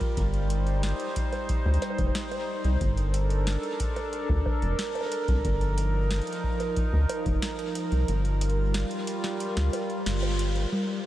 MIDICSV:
0, 0, Header, 1, 5, 480
1, 0, Start_track
1, 0, Key_signature, -2, "minor"
1, 0, Tempo, 659341
1, 126, Time_signature, 4, 2, 24, 8
1, 8052, End_track
2, 0, Start_track
2, 0, Title_t, "Ambient pad"
2, 0, Program_c, 0, 92
2, 0, Note_on_c, 0, 55, 92
2, 0, Note_on_c, 0, 65, 84
2, 0, Note_on_c, 0, 70, 100
2, 96, Note_off_c, 0, 70, 0
2, 107, Note_off_c, 0, 65, 0
2, 126, Note_on_c, 0, 72, 100
2, 127, Note_on_c, 0, 63, 79
2, 2017, Note_off_c, 0, 55, 0
2, 2027, Note_off_c, 0, 63, 0
2, 2027, Note_off_c, 0, 72, 0
2, 2045, Note_on_c, 0, 69, 90
2, 2045, Note_on_c, 0, 70, 104
2, 2046, Note_on_c, 0, 62, 82
2, 3946, Note_off_c, 0, 62, 0
2, 3946, Note_off_c, 0, 69, 0
2, 3966, Note_on_c, 0, 63, 86
2, 3967, Note_on_c, 0, 53, 93
2, 5867, Note_off_c, 0, 53, 0
2, 5867, Note_off_c, 0, 63, 0
2, 5886, Note_on_c, 0, 55, 90
2, 5886, Note_on_c, 0, 65, 85
2, 7776, Note_off_c, 0, 70, 0
2, 7786, Note_off_c, 0, 55, 0
2, 7786, Note_off_c, 0, 65, 0
2, 7804, Note_on_c, 0, 55, 89
2, 7805, Note_on_c, 0, 63, 80
2, 7805, Note_on_c, 0, 72, 98
2, 8052, Note_off_c, 0, 55, 0
2, 8052, Note_off_c, 0, 63, 0
2, 8052, Note_off_c, 0, 72, 0
2, 8052, End_track
3, 0, Start_track
3, 0, Title_t, "Synth arpeggio sound"
3, 0, Program_c, 1, 84
3, 7806, Note_on_c, 1, 55, 81
3, 7911, Note_off_c, 1, 55, 0
3, 8052, End_track
4, 0, Start_track
4, 0, Title_t, "Analog synth bass"
4, 0, Program_c, 2, 38
4, 126, Note_on_c, 2, 31, 95
4, 679, Note_off_c, 2, 31, 0
4, 1205, Note_on_c, 2, 38, 99
4, 1296, Note_off_c, 2, 38, 0
4, 1445, Note_on_c, 2, 29, 90
4, 1536, Note_off_c, 2, 29, 0
4, 1925, Note_on_c, 2, 36, 85
4, 2016, Note_off_c, 2, 36, 0
4, 2045, Note_on_c, 2, 31, 94
4, 2599, Note_off_c, 2, 31, 0
4, 3125, Note_on_c, 2, 38, 100
4, 3216, Note_off_c, 2, 38, 0
4, 3365, Note_on_c, 2, 29, 91
4, 3456, Note_off_c, 2, 29, 0
4, 3845, Note_on_c, 2, 36, 96
4, 3936, Note_off_c, 2, 36, 0
4, 3965, Note_on_c, 2, 31, 100
4, 4519, Note_off_c, 2, 31, 0
4, 5045, Note_on_c, 2, 38, 96
4, 5136, Note_off_c, 2, 38, 0
4, 5285, Note_on_c, 2, 29, 96
4, 5376, Note_off_c, 2, 29, 0
4, 5765, Note_on_c, 2, 36, 88
4, 5856, Note_off_c, 2, 36, 0
4, 5885, Note_on_c, 2, 31, 97
4, 6439, Note_off_c, 2, 31, 0
4, 6965, Note_on_c, 2, 38, 97
4, 7056, Note_off_c, 2, 38, 0
4, 7325, Note_on_c, 2, 31, 82
4, 7759, Note_off_c, 2, 31, 0
4, 8052, End_track
5, 0, Start_track
5, 0, Title_t, "Drums"
5, 5, Note_on_c, 9, 42, 39
5, 6, Note_on_c, 9, 36, 107
5, 78, Note_off_c, 9, 42, 0
5, 79, Note_off_c, 9, 36, 0
5, 125, Note_on_c, 9, 42, 59
5, 126, Note_on_c, 9, 36, 114
5, 198, Note_off_c, 9, 42, 0
5, 199, Note_off_c, 9, 36, 0
5, 245, Note_on_c, 9, 42, 38
5, 318, Note_off_c, 9, 42, 0
5, 365, Note_on_c, 9, 42, 89
5, 438, Note_off_c, 9, 42, 0
5, 485, Note_on_c, 9, 42, 36
5, 558, Note_off_c, 9, 42, 0
5, 605, Note_on_c, 9, 38, 108
5, 605, Note_on_c, 9, 42, 60
5, 678, Note_off_c, 9, 38, 0
5, 678, Note_off_c, 9, 42, 0
5, 725, Note_on_c, 9, 42, 39
5, 798, Note_off_c, 9, 42, 0
5, 845, Note_on_c, 9, 42, 88
5, 846, Note_on_c, 9, 36, 85
5, 918, Note_off_c, 9, 36, 0
5, 918, Note_off_c, 9, 42, 0
5, 965, Note_on_c, 9, 42, 36
5, 965, Note_on_c, 9, 60, 35
5, 1038, Note_off_c, 9, 42, 0
5, 1038, Note_off_c, 9, 60, 0
5, 1085, Note_on_c, 9, 36, 100
5, 1085, Note_on_c, 9, 42, 61
5, 1158, Note_off_c, 9, 36, 0
5, 1158, Note_off_c, 9, 42, 0
5, 1265, Note_on_c, 9, 42, 40
5, 1325, Note_off_c, 9, 42, 0
5, 1325, Note_on_c, 9, 42, 88
5, 1325, Note_on_c, 9, 60, 49
5, 1385, Note_off_c, 9, 60, 0
5, 1385, Note_on_c, 9, 60, 40
5, 1398, Note_off_c, 9, 42, 0
5, 1445, Note_off_c, 9, 60, 0
5, 1445, Note_on_c, 9, 36, 120
5, 1445, Note_on_c, 9, 42, 37
5, 1445, Note_on_c, 9, 60, 34
5, 1505, Note_off_c, 9, 60, 0
5, 1505, Note_on_c, 9, 60, 28
5, 1518, Note_off_c, 9, 36, 0
5, 1518, Note_off_c, 9, 42, 0
5, 1565, Note_on_c, 9, 38, 119
5, 1565, Note_on_c, 9, 42, 64
5, 1578, Note_off_c, 9, 60, 0
5, 1638, Note_off_c, 9, 38, 0
5, 1638, Note_off_c, 9, 42, 0
5, 1685, Note_on_c, 9, 42, 39
5, 1685, Note_on_c, 9, 60, 49
5, 1758, Note_off_c, 9, 42, 0
5, 1758, Note_off_c, 9, 60, 0
5, 1925, Note_on_c, 9, 42, 35
5, 1998, Note_off_c, 9, 42, 0
5, 2045, Note_on_c, 9, 36, 115
5, 2046, Note_on_c, 9, 42, 62
5, 2118, Note_off_c, 9, 36, 0
5, 2118, Note_off_c, 9, 42, 0
5, 2165, Note_on_c, 9, 42, 38
5, 2238, Note_off_c, 9, 42, 0
5, 2285, Note_on_c, 9, 42, 84
5, 2358, Note_off_c, 9, 42, 0
5, 2405, Note_on_c, 9, 42, 37
5, 2478, Note_off_c, 9, 42, 0
5, 2525, Note_on_c, 9, 38, 109
5, 2525, Note_on_c, 9, 42, 58
5, 2598, Note_off_c, 9, 38, 0
5, 2598, Note_off_c, 9, 42, 0
5, 2645, Note_on_c, 9, 42, 39
5, 2718, Note_off_c, 9, 42, 0
5, 2765, Note_on_c, 9, 36, 81
5, 2765, Note_on_c, 9, 42, 93
5, 2838, Note_off_c, 9, 36, 0
5, 2838, Note_off_c, 9, 42, 0
5, 2885, Note_on_c, 9, 42, 35
5, 2885, Note_on_c, 9, 60, 37
5, 2958, Note_off_c, 9, 42, 0
5, 2958, Note_off_c, 9, 60, 0
5, 3005, Note_on_c, 9, 42, 59
5, 3078, Note_off_c, 9, 42, 0
5, 3125, Note_on_c, 9, 36, 117
5, 3198, Note_off_c, 9, 36, 0
5, 3245, Note_on_c, 9, 36, 122
5, 3245, Note_on_c, 9, 60, 55
5, 3318, Note_off_c, 9, 36, 0
5, 3318, Note_off_c, 9, 60, 0
5, 3365, Note_on_c, 9, 42, 38
5, 3438, Note_off_c, 9, 42, 0
5, 3485, Note_on_c, 9, 38, 124
5, 3485, Note_on_c, 9, 42, 63
5, 3558, Note_off_c, 9, 38, 0
5, 3558, Note_off_c, 9, 42, 0
5, 3605, Note_on_c, 9, 42, 36
5, 3605, Note_on_c, 9, 60, 50
5, 3645, Note_off_c, 9, 60, 0
5, 3645, Note_on_c, 9, 60, 41
5, 3678, Note_off_c, 9, 42, 0
5, 3685, Note_off_c, 9, 60, 0
5, 3685, Note_on_c, 9, 60, 33
5, 3725, Note_on_c, 9, 42, 92
5, 3758, Note_off_c, 9, 60, 0
5, 3798, Note_off_c, 9, 42, 0
5, 3845, Note_on_c, 9, 36, 99
5, 3845, Note_on_c, 9, 42, 37
5, 3918, Note_off_c, 9, 36, 0
5, 3918, Note_off_c, 9, 42, 0
5, 3965, Note_on_c, 9, 36, 109
5, 3965, Note_on_c, 9, 42, 63
5, 4038, Note_off_c, 9, 36, 0
5, 4038, Note_off_c, 9, 42, 0
5, 4085, Note_on_c, 9, 42, 40
5, 4158, Note_off_c, 9, 42, 0
5, 4205, Note_on_c, 9, 42, 89
5, 4278, Note_off_c, 9, 42, 0
5, 4445, Note_on_c, 9, 38, 105
5, 4445, Note_on_c, 9, 42, 28
5, 4518, Note_off_c, 9, 38, 0
5, 4518, Note_off_c, 9, 42, 0
5, 4525, Note_on_c, 9, 42, 37
5, 4565, Note_off_c, 9, 42, 0
5, 4565, Note_on_c, 9, 42, 40
5, 4605, Note_off_c, 9, 42, 0
5, 4605, Note_on_c, 9, 42, 53
5, 4678, Note_off_c, 9, 42, 0
5, 4685, Note_on_c, 9, 36, 81
5, 4758, Note_off_c, 9, 36, 0
5, 4805, Note_on_c, 9, 42, 37
5, 4805, Note_on_c, 9, 60, 35
5, 4878, Note_off_c, 9, 42, 0
5, 4878, Note_off_c, 9, 60, 0
5, 4925, Note_on_c, 9, 36, 97
5, 4925, Note_on_c, 9, 42, 61
5, 4998, Note_off_c, 9, 36, 0
5, 4998, Note_off_c, 9, 42, 0
5, 5165, Note_on_c, 9, 42, 91
5, 5165, Note_on_c, 9, 60, 55
5, 5238, Note_off_c, 9, 42, 0
5, 5238, Note_off_c, 9, 60, 0
5, 5285, Note_on_c, 9, 42, 41
5, 5286, Note_on_c, 9, 36, 112
5, 5357, Note_off_c, 9, 42, 0
5, 5358, Note_off_c, 9, 36, 0
5, 5405, Note_on_c, 9, 38, 116
5, 5405, Note_on_c, 9, 42, 67
5, 5477, Note_off_c, 9, 38, 0
5, 5477, Note_off_c, 9, 42, 0
5, 5524, Note_on_c, 9, 42, 39
5, 5597, Note_off_c, 9, 42, 0
5, 5644, Note_on_c, 9, 42, 89
5, 5717, Note_off_c, 9, 42, 0
5, 5765, Note_on_c, 9, 42, 39
5, 5837, Note_off_c, 9, 42, 0
5, 5885, Note_on_c, 9, 42, 69
5, 5957, Note_off_c, 9, 42, 0
5, 6005, Note_on_c, 9, 42, 40
5, 6078, Note_off_c, 9, 42, 0
5, 6125, Note_on_c, 9, 42, 97
5, 6185, Note_off_c, 9, 42, 0
5, 6185, Note_on_c, 9, 42, 39
5, 6258, Note_off_c, 9, 42, 0
5, 6365, Note_on_c, 9, 38, 114
5, 6365, Note_on_c, 9, 42, 66
5, 6438, Note_off_c, 9, 38, 0
5, 6438, Note_off_c, 9, 42, 0
5, 6485, Note_on_c, 9, 42, 44
5, 6558, Note_off_c, 9, 42, 0
5, 6605, Note_on_c, 9, 42, 93
5, 6678, Note_off_c, 9, 42, 0
5, 6725, Note_on_c, 9, 38, 59
5, 6798, Note_off_c, 9, 38, 0
5, 6845, Note_on_c, 9, 42, 68
5, 6918, Note_off_c, 9, 42, 0
5, 6966, Note_on_c, 9, 38, 63
5, 6966, Note_on_c, 9, 42, 43
5, 7039, Note_off_c, 9, 38, 0
5, 7039, Note_off_c, 9, 42, 0
5, 7086, Note_on_c, 9, 42, 92
5, 7086, Note_on_c, 9, 60, 58
5, 7158, Note_off_c, 9, 42, 0
5, 7158, Note_off_c, 9, 60, 0
5, 7205, Note_on_c, 9, 42, 42
5, 7278, Note_off_c, 9, 42, 0
5, 7326, Note_on_c, 9, 38, 124
5, 7326, Note_on_c, 9, 42, 70
5, 7398, Note_off_c, 9, 38, 0
5, 7398, Note_off_c, 9, 42, 0
5, 7445, Note_on_c, 9, 42, 40
5, 7445, Note_on_c, 9, 60, 55
5, 7518, Note_off_c, 9, 42, 0
5, 7518, Note_off_c, 9, 60, 0
5, 7565, Note_on_c, 9, 42, 98
5, 7638, Note_off_c, 9, 42, 0
5, 7685, Note_on_c, 9, 42, 40
5, 7758, Note_off_c, 9, 42, 0
5, 8052, End_track
0, 0, End_of_file